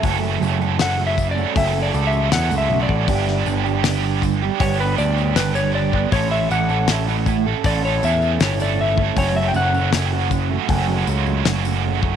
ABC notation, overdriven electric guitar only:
X:1
M:4/4
L:1/16
Q:1/4=79
K:F#phr
V:1 name="Overdriven electric guitar"
[F,,C,F,A,CA]2 [F,A,CA] [F,A,CA] [F,,C,F,A,CA] [F,A,CA]2 [F,A,CA]2 [F,A,CA] [F,A,CA]2 [F,,C,F,A,CA] [F,A,CA]2 [F,A,CA] | [G,,D,G,B,DG]2 [G,B,DG] [G,B,DG] [G,,D,G,B,DG] [G,B,DG]2 [G,B,DG]2 [G,B,DG] [G,B,DG]2 [G,,D,G,B,DG] [G,B,DG]2 [G,B,DG] | [A,,E,A,CA]2 [E,A,CA] [A,CA] [A,,E,A,CA] [A,CA]2 [A,CA]2 [A,CA] [E,A,CA]2 [A,,E,A,CA] [A,CA]2 [A,CA] | [F,,C,F,A,CF]2 [F,A,CF] [F,A,CF] [F,,C,F,A,CF] [F,A,CF]2 [F,A,CF]2 [F,A,CF] [F,A,CF]2 [F,,C,F,A,CF] [F,A,CF]2 [F,A,CF] |]